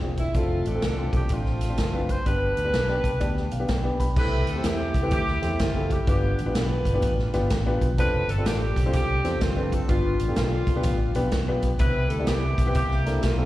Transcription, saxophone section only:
0.19 0.34 E4 medium
0.35 1.26 A3 medium
0.35 0.65 C4 medium
0.35 0.66 F4 medium
0.66 1.30 C4 medium
0.66 1.57 D4 medium
0.66 1.14 A4 medium
1.15 1.30 G4 medium
1.31 2.22 A3 medium
1.31 2.22 C4 medium
1.31 2.10 F4 loud
2.10 2.26 C5 loud
2.26 3.66 D4 medium
2.26 3.66 G4 medium
2.26 3.69 B4 medium
4.17 4.63 E4 medium
4.17 4.64 G4 medium
4.17 4.46 B4 loud
4.48 4.65 A4 loud
4.64 5.11 E4 medium
4.64 5.11 G4 medium
5.12 6.04 E4 medium
5.12 5.57 G4 loud
5.60 5.91 F4 medium
5.91 6.05 G4 medium
6.07 6.99 B3 medium
6.07 6.54 D4 medium
6.07 6.51 G4 medium
6.55 7.47 D4 medium
6.55 7.47 F4 medium
6.55 7.50 B4 medium
7.98 8.46 D4 medium
7.98 8.27 B4 loud
8.29 8.46 A4 loud
8.46 8.94 C4 medium
8.46 8.93 D4 medium
8.46 8.93 G4 medium
8.94 9.86 C4 medium
8.94 9.86 D4 medium
8.94 9.38 G4 loud
9.41 9.72 F4 loud
9.72 9.89 A4 loud
9.89 10.36 B3 medium
9.89 10.36 D4 medium
9.89 10.33 F4 medium
10.37 11.29 B3 medium
10.37 11.29 D4 medium
10.37 11.29 F4 medium
11.79 12.26 E4 medium
11.79 12.26 G4 medium
11.79 12.09 B4 loud
12.10 12.27 A4 loud
12.27 12.72 B3 medium
12.27 12.72 E4 medium
12.27 12.74 G4 loud
12.75 13.45 A#3 medium
12.75 13.45 E4 medium
12.75 13.20 G4 loud
13.23 13.45 F4 medium

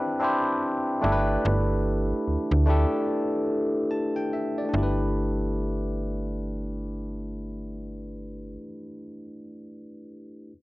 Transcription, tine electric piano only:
0.00 0.19 C4 loud
0.00 0.20 D4 medium
0.00 0.21 E4 medium
0.00 0.23 G4 medium
0.00 1.04 B4 loud
0.19 1.02 C4 medium
0.19 1.01 D4 medium
0.19 1.02 E4 medium
0.19 1.03 G4 medium
0.24 1.04 C5 medium
1.01 2.35 A3 medium
1.01 2.36 D4 medium
1.01 2.36 E4 medium
1.01 2.37 G4 medium
1.06 1.12 A4 medium
1.12 2.40 B4 medium
2.66 3.33 A3 medium
2.66 3.34 D4 medium
2.66 3.34 E4 medium
2.66 3.35 G4 medium
2.70 3.35 A4 medium
3.91 4.14 A5 medium
4.16 4.31 G5 medium
4.33 4.56 E5 medium
4.58 4.96 D5 medium
4.65 8.48 A3 medium
4.69 8.53 D4 medium
4.74 8.57 E4 medium
4.78 8.62 G4 medium
4.83 8.67 B4 medium

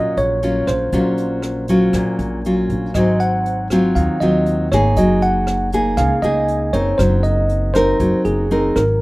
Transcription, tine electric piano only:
0.00 0.19 D#5 medium
0.18 0.69 C#5 medium
0.67 2.15 C5 medium
2.95 3.18 D#5 medium
3.20 3.67 F#5 medium
3.95 4.22 F5 medium
4.20 4.68 D#5 medium
4.72 4.98 C#5 medium
4.97 5.23 D#5 medium
5.22 5.69 F#5 medium
5.97 6.24 F5 medium
6.22 6.75 D#5 loud
6.73 6.99 C#5 medium
6.98 7.22 C5 medium
7.23 7.76 D#5 medium
7.74 8.21 C5 medium
8.25 8.77 G#4 medium
8.76 9.02 A#4 medium

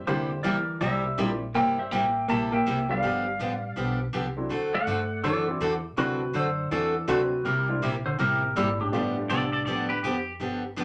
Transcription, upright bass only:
0.07 0.43 E2 medium
0.44 0.80 D2 medium
0.81 1.17 C2 loud
1.18 1.54 A#1 medium
1.55 1.91 G1 medium
1.92 2.28 A1 medium
2.29 2.65 A#1 medium
2.66 3.02 C2 medium
3.03 3.38 G1 medium
3.39 3.75 A1 medium
3.76 4.12 B1 medium
4.13 4.49 C2 medium
4.50 4.86 D2 medium
4.86 5.23 G2 medium
5.23 5.59 F#2 medium
5.60 5.96 E2 loud
5.97 6.33 D2 medium
6.34 6.70 F#2 loud
6.71 7.07 E2 medium
7.08 7.44 D2 medium
7.45 7.81 C2 medium
7.82 8.18 A#1 loud
8.19 8.55 A1 loud
8.56 8.91 G#1 loud
8.93 9.28 G1 medium
9.30 9.65 C2 medium
9.67 10.02 D2 medium
10.03 10.39 F2 medium
10.40 10.84 G1 medium

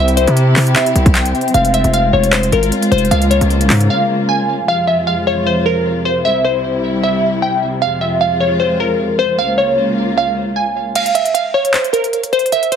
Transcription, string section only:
0.00 1.53 C3 medium
0.00 3.08 C4 medium
0.00 1.53 E4 medium
0.00 1.53 G4 loud
1.54 4.65 G#3 medium
1.54 4.65 F4 loud
3.11 4.67 C#3 medium
3.11 4.66 A#3 medium
4.68 6.23 F2 medium
4.68 9.35 C3 medium
4.68 6.23 G#3 medium
4.68 6.23 F4 medium
6.25 7.80 C2 medium
6.25 7.80 G3 medium
6.25 7.80 E4 medium
7.82 9.37 F2 medium
7.82 9.37 G#3 medium
7.82 9.37 F4 medium
9.39 10.94 C#2 medium
9.39 10.94 C#3 medium
9.39 10.94 A#3 medium
9.39 10.94 F4 medium

